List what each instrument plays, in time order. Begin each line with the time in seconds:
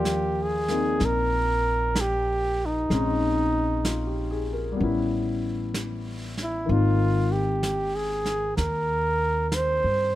Already playing: upright bass D#2, grand piano F3 A#3 F4 D5, flugelhorn G4
0.05 brush sweep, snare, hi-hat pedal
0.43 flugelhorn G#4
0.68 grand piano A#3 C4 D#4, snare
1.00 upright bass A#1, brush sweep, snare
1.05 flugelhorn A#4
1.95 brush sweep, snare, hi-hat pedal
2.01 flugelhorn G4
2.66 flugelhorn D#4
2.90 upright bass A#1, grand piano G#3 C4 C#4 D#4, brush sweep, snare
3.85 grand piano F4, brush sweep, snare, hi-hat pedal
4.07 grand piano G4
4.31 grand piano G#4
4.53 grand piano A#4
4.72 grand piano G3
4.76 grand piano B3 C#4, brush sweep
4.80 upright bass A1, grand piano E4
5.74 brush sweep, snare, hi-hat pedal
6.37 snare
6.43 flugelhorn E4
6.66 upright bass G#1, grand piano D#3 A#3 C4, brush sweep
6.71 grand piano D#4, flugelhorn F4
7.32 flugelhorn G4
7.63 brush sweep, snare, hi-hat pedal
7.96 flugelhorn G#4
8.25 snare
8.57 upright bass D#2, flugelhorn A#4, brush sweep, snare
9.50 flugelhorn A#4, brush sweep, snare, hi-hat pedal
9.55 flugelhorn C5
9.84 upright bass G2